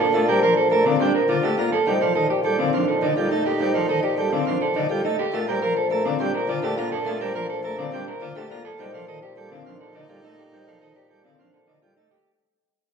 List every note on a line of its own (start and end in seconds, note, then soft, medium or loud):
0.00 1.72 A#2 medium
0.00 1.69 D4 medium
0.00 0.19 A4 medium
0.14 0.25 A3 loud
0.14 0.33 F4 medium
0.14 0.33 A#4 loud
0.28 0.39 G3 medium
0.28 0.42 A#4 medium
0.28 0.48 C5 medium
0.43 0.54 F3 medium
0.43 0.57 A#4 loud
0.43 0.62 A#4 medium
0.57 0.71 A4 medium
0.57 0.76 C5 medium
0.71 0.83 A3 medium
0.71 0.91 A4 medium
0.71 0.91 A#4 medium
0.86 0.97 D3 medium
0.86 1.05 C4 loud
0.86 1.05 F5 medium
1.00 1.12 G3 loud
1.00 1.19 D4 medium
1.00 1.20 A#4 medium
1.15 1.34 A#4 medium
1.15 1.34 C5 medium
1.29 1.41 D3 medium
1.29 1.48 F4 loud
1.29 1.48 D5 medium
1.43 1.55 A3 loud
1.43 1.63 G4 medium
1.43 1.63 A4 medium
1.58 1.69 A#3 medium
1.58 1.77 F4 medium
1.58 1.77 D5 medium
1.72 1.91 A4 loud
1.72 1.92 A4 medium
1.87 5.18 A#2 medium
1.87 1.98 G3 medium
1.87 5.15 D#4 medium
1.87 2.06 D#4 medium
1.87 2.06 C5 loud
2.01 2.13 F3 medium
2.01 2.14 A4 medium
2.01 2.21 D5 medium
2.15 2.27 D#3 medium
2.15 2.30 A4 loud
2.15 2.35 C5 medium
2.30 2.44 G4 medium
2.30 2.49 D5 loud
2.44 2.56 G3 medium
2.44 2.64 A4 medium
2.59 2.71 D3 medium
2.59 2.78 C4 loud
2.59 2.78 F5 medium
2.74 2.85 F3 loud
2.74 2.93 D4 medium
2.74 2.93 C5 medium
2.88 3.07 A4 medium
2.88 3.07 D5 medium
3.02 3.14 D3 medium
3.02 3.17 D#4 loud
3.02 3.22 D#5 medium
3.17 3.28 G3 medium
3.17 3.31 F4 medium
3.17 3.36 A4 loud
3.31 3.43 A3 medium
3.31 3.50 D#4 medium
3.31 3.50 D#5 medium
3.46 3.65 G4 loud
3.46 3.65 A4 medium
3.60 3.71 G3 loud
3.60 3.79 D#4 medium
3.60 3.79 C5 loud
3.74 3.86 F3 medium
3.74 3.88 A4 medium
3.74 3.93 D5 medium
3.88 4.00 D#3 medium
3.88 4.03 A4 loud
3.88 4.08 C5 medium
4.03 4.18 G4 medium
4.03 4.22 D5 loud
4.18 4.29 G3 medium
4.18 4.37 A4 medium
4.32 4.43 D3 medium
4.32 4.51 C4 loud
4.32 4.51 F5 medium
4.46 4.58 F3 loud
4.46 4.66 D4 medium
4.46 4.66 C5 loud
4.61 4.80 A4 medium
4.61 4.80 D5 medium
4.75 4.87 D3 loud
4.75 4.90 D#4 loud
4.75 4.94 D#5 medium
4.90 5.01 G3 loud
4.90 5.04 F4 medium
4.90 5.09 A4 loud
5.04 5.16 A3 loud
5.04 5.23 D#4 loud
5.04 5.23 D#5 loud
5.19 5.38 G4 loud
5.19 5.38 A4 loud
5.33 8.64 A#2 medium
5.33 5.44 A3 loud
5.33 8.61 D4 medium
5.33 5.52 F4 medium
5.33 5.52 A#4 loud
5.48 5.59 G3 medium
5.48 5.61 A#4 medium
5.62 5.73 F3 medium
5.62 5.81 A#4 medium
5.62 5.76 A#4 loud
5.76 5.91 A4 medium
5.76 5.95 C5 loud
5.91 6.02 A3 loud
5.91 6.10 A4 loud
5.91 6.10 A#4 medium
6.05 6.17 D3 loud
6.05 6.24 C4 loud
6.05 6.24 F5 medium
6.20 6.31 G3 loud
6.20 6.39 D4 loud
6.20 6.39 A#4 loud
6.34 6.53 A#4 medium
6.34 6.53 C5 medium
6.49 6.60 D3 loud
6.49 6.68 F4 loud
6.49 6.68 D5 medium
6.63 6.74 A3 loud
6.63 6.82 G4 medium
6.63 6.82 A4 loud
6.78 6.88 A#3 medium
6.78 6.96 F4 loud
6.78 6.97 D5 loud
6.92 7.11 A4 loud
7.06 7.17 A3 loud
7.06 7.25 F4 loud
7.06 7.25 A#4 loud
7.21 7.32 G3 medium
7.21 7.34 A#4 loud
7.21 7.40 C5 loud
7.35 7.46 F3 medium
7.35 7.54 A#4 medium
7.35 7.49 A#4 loud
7.50 7.64 A4 loud
7.50 7.69 C5 loud
7.64 7.75 A3 medium
7.64 7.83 A4 medium
7.64 7.83 A#4 medium
7.78 7.90 D3 loud
7.78 7.97 C4 loud
7.78 7.97 F5 medium
7.92 8.04 G3 loud
7.92 8.12 D4 loud
7.92 8.12 A#4 loud
8.07 8.26 A#4 medium
8.07 8.26 C5 medium
8.21 8.33 D3 loud
8.21 8.41 F4 loud
8.21 8.41 D5 loud
8.36 8.47 A3 loud
8.36 8.55 G4 medium
8.36 8.55 A4 loud
8.51 8.62 A#3 loud
8.51 8.70 F4 loud
8.51 8.69 D5 loud
8.65 8.84 A4 loud
8.79 12.10 A#2 loud
8.79 8.90 G3 loud
8.79 12.07 D#4 loud
8.79 8.98 D#4 medium
8.79 8.98 C5 loud
8.94 9.05 F3 medium
8.94 9.07 A4 medium
8.94 9.13 D5 loud
9.08 9.19 D#3 loud
9.08 9.22 A4 loud
9.08 9.27 C5 loud
9.22 9.37 G4 loud
9.22 9.42 D5 loud
9.37 9.48 G3 medium
9.37 9.56 A4 medium
9.52 9.62 D3 loud
9.52 9.70 C4 loud
9.52 9.70 F5 medium
9.66 9.77 F3 loud
9.66 9.85 D4 medium
9.66 9.85 C5 loud
9.80 9.99 A4 medium
9.80 9.99 D5 medium
9.95 10.06 D3 medium
9.95 10.09 D#4 loud
10.09 10.20 G3 loud
10.09 10.23 F4 medium
10.09 10.28 A4 loud
10.24 10.35 A3 medium
10.24 10.43 D#4 loud
10.24 10.43 D#5 medium
10.38 10.57 G4 loud
10.38 10.57 A4 loud
10.53 10.64 G3 loud
10.53 10.72 D#4 medium
10.53 10.71 C5 loud
10.67 10.78 F3 medium
10.67 10.80 A4 medium
10.67 10.86 D5 medium
10.81 10.92 D#3 medium
10.81 10.96 A4 loud
10.81 11.00 C5 medium
10.96 11.10 G4 medium
10.96 11.15 D5 loud
11.10 11.21 G3 medium
11.10 11.29 A4 medium
11.24 11.36 D3 medium
11.24 11.44 C4 loud
11.24 11.43 F5 medium
11.39 11.50 F3 loud
11.39 11.58 D4 medium
11.39 11.58 C5 loud
11.53 11.72 A4 medium
11.53 11.72 D5 medium
11.68 11.79 D3 medium
11.68 11.82 D#4 loud
11.82 11.93 G3 loud
11.82 11.96 F4 medium
11.82 12.01 A4 loud
11.97 12.08 A3 medium
11.97 12.16 D#4 medium
11.97 12.16 D#5 medium
12.11 12.30 G4 loud
12.11 12.30 A4 medium